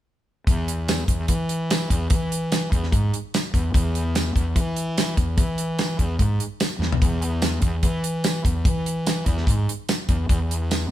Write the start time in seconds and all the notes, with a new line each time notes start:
0.47 E2, kick, closed hi-hat
0.68 closed hi-hat
0.88 snare, closed hi-hat, tambourine
1.08 E2, kick, closed hi-hat
1.28 E3, kick, closed hi-hat
1.49 closed hi-hat
1.70 snare, closed hi-hat, tambourine
1.90 E2, kick, closed hi-hat
2.10 E3, kick, closed hi-hat
2.32 closed hi-hat
2.52 snare, closed hi-hat, tambourine
2.72 E2, kick, closed hi-hat
2.83 snare
2.92 G#2, kick, closed hi-hat
3.14 closed hi-hat
3.34 snare, closed hi-hat, tambourine
3.53 E2, kick, closed hi-hat
3.74 E2, kick, closed hi-hat
3.95 closed hi-hat
4.15 snare, closed hi-hat, tambourine
4.36 E2, kick, closed hi-hat
4.56 E3, kick, closed hi-hat
4.77 closed hi-hat
4.98 snare, closed hi-hat, tambourine
5.17 E2, kick, closed hi-hat
5.37 E3, kick, closed hi-hat
5.58 closed hi-hat
5.79 snare, closed hi-hat, tambourine
5.99 E2, kick, closed hi-hat
6.19 G#2, kick, closed hi-hat
6.40 closed hi-hat
6.60 snare, closed hi-hat, tambourine
6.79 E2, snare
6.92 floor tom
7.01 E2, kick, closed hi-hat
7.22 closed hi-hat
7.42 snare, closed hi-hat, tambourine
7.62 E2, kick, closed hi-hat
7.83 E3, kick, closed hi-hat
8.04 closed hi-hat
8.24 snare, closed hi-hat, tambourine
8.44 E2, kick, closed hi-hat
8.65 E3, kick, closed hi-hat
8.86 closed hi-hat
9.07 snare, closed hi-hat, tambourine
9.26 E2, kick, closed hi-hat
9.38 snare
9.47 G#2, kick, closed hi-hat
9.69 closed hi-hat
9.89 snare, closed hi-hat, tambourine
10.09 E2, kick, closed hi-hat
10.29 E2, kick, closed hi-hat
10.51 closed hi-hat
10.71 snare, closed hi-hat, tambourine